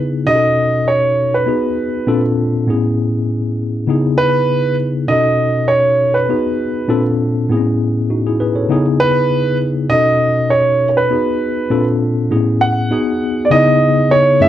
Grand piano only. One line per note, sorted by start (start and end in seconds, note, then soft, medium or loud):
0.27 0.89 D#5 loud
0.88 1.35 C#5 medium
1.34 2.20 B4 medium
4.18 4.74 B4 loud
5.08 5.71 D#5 medium
5.68 6.16 C#5 medium
6.14 7.01 B4 medium
9.00 9.56 B4 loud
9.90 10.52 D#5 loud
10.50 10.88 C#5 medium
10.89 10.97 C#5 soft
10.97 11.83 B4 medium
12.61 13.41 F#5 medium
13.45 13.51 D5 medium
13.51 14.13 D#5 loud
14.11 14.39 C#5 medium
14.42 14.49 E5 medium